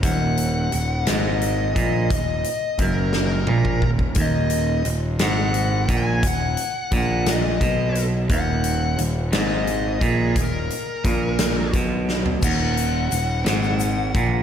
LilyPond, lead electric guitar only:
\new Staff \with { instrumentName = "Lead electric guitar" } { \time 6/8 \key ees \minor \tempo 4. = 58 ges''4. ees''4. | ees''4 bes'8 bes'4 r8 | ees''4 r8 ges''4 aes''8 | ges''4 ges''8 ees''4 r8 |
ges''4 r8 ees''4 aes'8 | bes'2 r4 | ges''2. | }